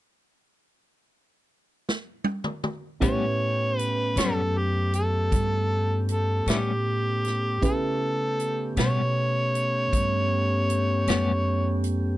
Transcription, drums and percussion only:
0, 0, Header, 1, 2, 480
1, 0, Start_track
1, 0, Tempo, 768246
1, 1881, Time_signature, 12, 3, 24, 8
1, 7607, End_track
2, 0, Start_track
2, 0, Title_t, "Drums"
2, 1179, Note_on_c, 9, 38, 63
2, 1241, Note_off_c, 9, 38, 0
2, 1401, Note_on_c, 9, 48, 73
2, 1464, Note_off_c, 9, 48, 0
2, 1525, Note_on_c, 9, 47, 66
2, 1587, Note_off_c, 9, 47, 0
2, 1647, Note_on_c, 9, 47, 76
2, 1709, Note_off_c, 9, 47, 0
2, 1885, Note_on_c, 9, 36, 80
2, 1887, Note_on_c, 9, 42, 69
2, 1948, Note_off_c, 9, 36, 0
2, 1950, Note_off_c, 9, 42, 0
2, 2369, Note_on_c, 9, 42, 58
2, 2432, Note_off_c, 9, 42, 0
2, 2604, Note_on_c, 9, 42, 75
2, 2619, Note_on_c, 9, 38, 79
2, 2667, Note_off_c, 9, 42, 0
2, 2681, Note_off_c, 9, 38, 0
2, 3083, Note_on_c, 9, 42, 57
2, 3146, Note_off_c, 9, 42, 0
2, 3324, Note_on_c, 9, 36, 72
2, 3325, Note_on_c, 9, 42, 68
2, 3386, Note_off_c, 9, 36, 0
2, 3387, Note_off_c, 9, 42, 0
2, 3802, Note_on_c, 9, 42, 57
2, 3865, Note_off_c, 9, 42, 0
2, 4045, Note_on_c, 9, 42, 73
2, 4060, Note_on_c, 9, 38, 89
2, 4108, Note_off_c, 9, 42, 0
2, 4122, Note_off_c, 9, 38, 0
2, 4527, Note_on_c, 9, 42, 49
2, 4541, Note_on_c, 9, 38, 26
2, 4589, Note_off_c, 9, 42, 0
2, 4604, Note_off_c, 9, 38, 0
2, 4764, Note_on_c, 9, 36, 85
2, 4767, Note_on_c, 9, 42, 67
2, 4827, Note_off_c, 9, 36, 0
2, 4829, Note_off_c, 9, 42, 0
2, 5246, Note_on_c, 9, 42, 53
2, 5308, Note_off_c, 9, 42, 0
2, 5479, Note_on_c, 9, 42, 65
2, 5494, Note_on_c, 9, 38, 93
2, 5542, Note_off_c, 9, 42, 0
2, 5556, Note_off_c, 9, 38, 0
2, 5967, Note_on_c, 9, 42, 56
2, 6030, Note_off_c, 9, 42, 0
2, 6203, Note_on_c, 9, 36, 70
2, 6205, Note_on_c, 9, 42, 66
2, 6266, Note_off_c, 9, 36, 0
2, 6267, Note_off_c, 9, 42, 0
2, 6683, Note_on_c, 9, 42, 59
2, 6746, Note_off_c, 9, 42, 0
2, 6920, Note_on_c, 9, 42, 71
2, 6934, Note_on_c, 9, 38, 94
2, 6982, Note_off_c, 9, 42, 0
2, 6997, Note_off_c, 9, 38, 0
2, 7396, Note_on_c, 9, 42, 62
2, 7458, Note_off_c, 9, 42, 0
2, 7607, End_track
0, 0, End_of_file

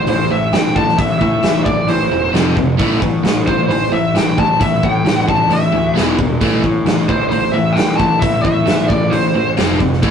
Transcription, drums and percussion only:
0, 0, Header, 1, 2, 480
1, 0, Start_track
1, 0, Key_signature, 0, "minor"
1, 0, Tempo, 452489
1, 1036, Time_signature, 4, 2, 24, 8
1, 10721, End_track
2, 0, Start_track
2, 0, Title_t, "Drums"
2, 75, Note_on_c, 9, 46, 53
2, 181, Note_off_c, 9, 46, 0
2, 560, Note_on_c, 9, 46, 50
2, 572, Note_on_c, 9, 38, 98
2, 666, Note_off_c, 9, 46, 0
2, 678, Note_off_c, 9, 38, 0
2, 699, Note_on_c, 9, 38, 27
2, 805, Note_off_c, 9, 38, 0
2, 806, Note_on_c, 9, 36, 79
2, 912, Note_off_c, 9, 36, 0
2, 939, Note_on_c, 9, 38, 28
2, 1045, Note_off_c, 9, 38, 0
2, 1046, Note_on_c, 9, 36, 102
2, 1051, Note_on_c, 9, 46, 51
2, 1152, Note_off_c, 9, 36, 0
2, 1157, Note_off_c, 9, 46, 0
2, 1284, Note_on_c, 9, 36, 74
2, 1390, Note_off_c, 9, 36, 0
2, 1518, Note_on_c, 9, 46, 49
2, 1530, Note_on_c, 9, 38, 98
2, 1624, Note_off_c, 9, 46, 0
2, 1636, Note_off_c, 9, 38, 0
2, 1762, Note_on_c, 9, 36, 79
2, 1868, Note_off_c, 9, 36, 0
2, 1999, Note_on_c, 9, 46, 47
2, 2105, Note_off_c, 9, 46, 0
2, 2484, Note_on_c, 9, 46, 46
2, 2496, Note_on_c, 9, 38, 103
2, 2591, Note_off_c, 9, 46, 0
2, 2602, Note_off_c, 9, 38, 0
2, 2724, Note_on_c, 9, 36, 78
2, 2830, Note_off_c, 9, 36, 0
2, 2965, Note_on_c, 9, 36, 102
2, 2966, Note_on_c, 9, 46, 47
2, 3071, Note_off_c, 9, 36, 0
2, 3072, Note_off_c, 9, 46, 0
2, 3205, Note_on_c, 9, 36, 75
2, 3311, Note_off_c, 9, 36, 0
2, 3444, Note_on_c, 9, 46, 49
2, 3455, Note_on_c, 9, 38, 97
2, 3550, Note_off_c, 9, 46, 0
2, 3562, Note_off_c, 9, 38, 0
2, 3686, Note_on_c, 9, 36, 74
2, 3792, Note_off_c, 9, 36, 0
2, 3936, Note_on_c, 9, 46, 49
2, 4042, Note_off_c, 9, 46, 0
2, 4408, Note_on_c, 9, 46, 52
2, 4420, Note_on_c, 9, 38, 96
2, 4514, Note_off_c, 9, 46, 0
2, 4526, Note_off_c, 9, 38, 0
2, 4544, Note_on_c, 9, 38, 28
2, 4648, Note_on_c, 9, 36, 80
2, 4650, Note_off_c, 9, 38, 0
2, 4754, Note_off_c, 9, 36, 0
2, 4888, Note_on_c, 9, 36, 102
2, 4888, Note_on_c, 9, 46, 55
2, 4994, Note_off_c, 9, 36, 0
2, 4994, Note_off_c, 9, 46, 0
2, 5127, Note_on_c, 9, 36, 79
2, 5234, Note_off_c, 9, 36, 0
2, 5369, Note_on_c, 9, 46, 49
2, 5381, Note_on_c, 9, 38, 98
2, 5475, Note_off_c, 9, 46, 0
2, 5487, Note_off_c, 9, 38, 0
2, 5606, Note_on_c, 9, 36, 74
2, 5712, Note_off_c, 9, 36, 0
2, 5842, Note_on_c, 9, 46, 50
2, 5948, Note_off_c, 9, 46, 0
2, 6326, Note_on_c, 9, 46, 43
2, 6338, Note_on_c, 9, 38, 96
2, 6432, Note_off_c, 9, 46, 0
2, 6444, Note_off_c, 9, 38, 0
2, 6563, Note_on_c, 9, 36, 82
2, 6669, Note_off_c, 9, 36, 0
2, 6803, Note_on_c, 9, 46, 49
2, 6804, Note_on_c, 9, 36, 102
2, 6909, Note_off_c, 9, 46, 0
2, 6910, Note_off_c, 9, 36, 0
2, 7043, Note_on_c, 9, 36, 72
2, 7149, Note_off_c, 9, 36, 0
2, 7279, Note_on_c, 9, 46, 47
2, 7291, Note_on_c, 9, 38, 94
2, 7385, Note_off_c, 9, 46, 0
2, 7397, Note_off_c, 9, 38, 0
2, 7521, Note_on_c, 9, 36, 77
2, 7627, Note_off_c, 9, 36, 0
2, 7762, Note_on_c, 9, 46, 47
2, 7868, Note_off_c, 9, 46, 0
2, 8240, Note_on_c, 9, 46, 50
2, 8252, Note_on_c, 9, 38, 99
2, 8346, Note_off_c, 9, 46, 0
2, 8358, Note_off_c, 9, 38, 0
2, 8371, Note_on_c, 9, 38, 28
2, 8477, Note_off_c, 9, 38, 0
2, 8482, Note_on_c, 9, 36, 79
2, 8588, Note_off_c, 9, 36, 0
2, 8720, Note_on_c, 9, 46, 57
2, 8722, Note_on_c, 9, 36, 107
2, 8826, Note_off_c, 9, 46, 0
2, 8828, Note_off_c, 9, 36, 0
2, 8961, Note_on_c, 9, 36, 76
2, 9067, Note_off_c, 9, 36, 0
2, 9198, Note_on_c, 9, 46, 53
2, 9210, Note_on_c, 9, 38, 104
2, 9304, Note_off_c, 9, 46, 0
2, 9316, Note_off_c, 9, 38, 0
2, 9441, Note_on_c, 9, 36, 77
2, 9547, Note_off_c, 9, 36, 0
2, 9681, Note_on_c, 9, 46, 51
2, 9787, Note_off_c, 9, 46, 0
2, 10157, Note_on_c, 9, 46, 49
2, 10169, Note_on_c, 9, 38, 100
2, 10263, Note_off_c, 9, 46, 0
2, 10275, Note_off_c, 9, 38, 0
2, 10400, Note_on_c, 9, 36, 76
2, 10506, Note_off_c, 9, 36, 0
2, 10534, Note_on_c, 9, 38, 28
2, 10637, Note_on_c, 9, 46, 52
2, 10639, Note_on_c, 9, 36, 105
2, 10640, Note_off_c, 9, 38, 0
2, 10721, Note_off_c, 9, 36, 0
2, 10721, Note_off_c, 9, 46, 0
2, 10721, End_track
0, 0, End_of_file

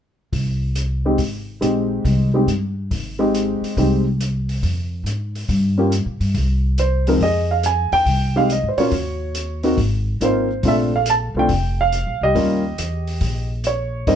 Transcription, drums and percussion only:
0, 0, Header, 1, 2, 480
1, 0, Start_track
1, 0, Key_signature, -4, "minor"
1, 0, Tempo, 429492
1, 370, Time_signature, 4, 2, 24, 8
1, 15819, End_track
2, 0, Start_track
2, 0, Title_t, "Drums"
2, 365, Note_on_c, 9, 36, 28
2, 366, Note_on_c, 9, 46, 32
2, 476, Note_off_c, 9, 36, 0
2, 478, Note_off_c, 9, 46, 0
2, 843, Note_on_c, 9, 42, 41
2, 954, Note_off_c, 9, 42, 0
2, 1320, Note_on_c, 9, 46, 35
2, 1325, Note_on_c, 9, 36, 26
2, 1432, Note_off_c, 9, 46, 0
2, 1437, Note_off_c, 9, 36, 0
2, 1811, Note_on_c, 9, 42, 36
2, 1923, Note_off_c, 9, 42, 0
2, 2289, Note_on_c, 9, 36, 29
2, 2293, Note_on_c, 9, 46, 36
2, 2401, Note_off_c, 9, 36, 0
2, 2405, Note_off_c, 9, 46, 0
2, 2773, Note_on_c, 9, 42, 40
2, 2885, Note_off_c, 9, 42, 0
2, 3253, Note_on_c, 9, 46, 35
2, 3254, Note_on_c, 9, 36, 30
2, 3365, Note_off_c, 9, 46, 0
2, 3366, Note_off_c, 9, 36, 0
2, 3738, Note_on_c, 9, 42, 38
2, 3850, Note_off_c, 9, 42, 0
2, 4067, Note_on_c, 9, 46, 31
2, 4179, Note_off_c, 9, 46, 0
2, 4214, Note_on_c, 9, 36, 29
2, 4217, Note_on_c, 9, 46, 35
2, 4326, Note_off_c, 9, 36, 0
2, 4329, Note_off_c, 9, 46, 0
2, 4699, Note_on_c, 9, 42, 39
2, 4811, Note_off_c, 9, 42, 0
2, 5018, Note_on_c, 9, 46, 29
2, 5130, Note_off_c, 9, 46, 0
2, 5172, Note_on_c, 9, 36, 29
2, 5175, Note_on_c, 9, 46, 33
2, 5284, Note_off_c, 9, 36, 0
2, 5286, Note_off_c, 9, 46, 0
2, 5658, Note_on_c, 9, 42, 39
2, 5769, Note_off_c, 9, 42, 0
2, 5983, Note_on_c, 9, 46, 29
2, 6095, Note_off_c, 9, 46, 0
2, 6133, Note_on_c, 9, 36, 29
2, 6135, Note_on_c, 9, 46, 38
2, 6245, Note_off_c, 9, 36, 0
2, 6247, Note_off_c, 9, 46, 0
2, 6616, Note_on_c, 9, 42, 43
2, 6727, Note_off_c, 9, 42, 0
2, 6937, Note_on_c, 9, 46, 29
2, 7048, Note_off_c, 9, 46, 0
2, 7092, Note_on_c, 9, 46, 35
2, 7094, Note_on_c, 9, 36, 28
2, 7203, Note_off_c, 9, 46, 0
2, 7206, Note_off_c, 9, 36, 0
2, 7575, Note_on_c, 9, 42, 39
2, 7687, Note_off_c, 9, 42, 0
2, 7899, Note_on_c, 9, 46, 31
2, 8011, Note_off_c, 9, 46, 0
2, 8053, Note_on_c, 9, 46, 37
2, 8054, Note_on_c, 9, 36, 28
2, 8165, Note_off_c, 9, 36, 0
2, 8165, Note_off_c, 9, 46, 0
2, 8531, Note_on_c, 9, 42, 45
2, 8643, Note_off_c, 9, 42, 0
2, 8854, Note_on_c, 9, 46, 29
2, 8966, Note_off_c, 9, 46, 0
2, 9009, Note_on_c, 9, 36, 28
2, 9011, Note_on_c, 9, 46, 37
2, 9121, Note_off_c, 9, 36, 0
2, 9123, Note_off_c, 9, 46, 0
2, 9496, Note_on_c, 9, 42, 44
2, 9607, Note_off_c, 9, 42, 0
2, 9809, Note_on_c, 9, 46, 32
2, 9921, Note_off_c, 9, 46, 0
2, 9962, Note_on_c, 9, 46, 40
2, 9967, Note_on_c, 9, 36, 28
2, 10074, Note_off_c, 9, 46, 0
2, 10079, Note_off_c, 9, 36, 0
2, 10446, Note_on_c, 9, 42, 42
2, 10557, Note_off_c, 9, 42, 0
2, 10764, Note_on_c, 9, 46, 30
2, 10876, Note_off_c, 9, 46, 0
2, 10924, Note_on_c, 9, 46, 37
2, 10926, Note_on_c, 9, 36, 30
2, 11036, Note_off_c, 9, 46, 0
2, 11037, Note_off_c, 9, 36, 0
2, 11410, Note_on_c, 9, 42, 42
2, 11522, Note_off_c, 9, 42, 0
2, 11882, Note_on_c, 9, 46, 37
2, 11885, Note_on_c, 9, 36, 32
2, 11993, Note_off_c, 9, 46, 0
2, 11997, Note_off_c, 9, 36, 0
2, 12357, Note_on_c, 9, 42, 46
2, 12469, Note_off_c, 9, 42, 0
2, 12839, Note_on_c, 9, 46, 35
2, 12845, Note_on_c, 9, 36, 30
2, 12951, Note_off_c, 9, 46, 0
2, 12956, Note_off_c, 9, 36, 0
2, 13326, Note_on_c, 9, 42, 38
2, 13437, Note_off_c, 9, 42, 0
2, 13808, Note_on_c, 9, 36, 29
2, 13808, Note_on_c, 9, 46, 36
2, 13919, Note_off_c, 9, 46, 0
2, 13920, Note_off_c, 9, 36, 0
2, 14285, Note_on_c, 9, 42, 48
2, 14397, Note_off_c, 9, 42, 0
2, 14610, Note_on_c, 9, 46, 29
2, 14722, Note_off_c, 9, 46, 0
2, 14761, Note_on_c, 9, 46, 38
2, 14765, Note_on_c, 9, 36, 30
2, 14873, Note_off_c, 9, 46, 0
2, 14877, Note_off_c, 9, 36, 0
2, 15241, Note_on_c, 9, 42, 42
2, 15353, Note_off_c, 9, 42, 0
2, 15725, Note_on_c, 9, 46, 38
2, 15726, Note_on_c, 9, 36, 31
2, 15819, Note_off_c, 9, 36, 0
2, 15819, Note_off_c, 9, 46, 0
2, 15819, End_track
0, 0, End_of_file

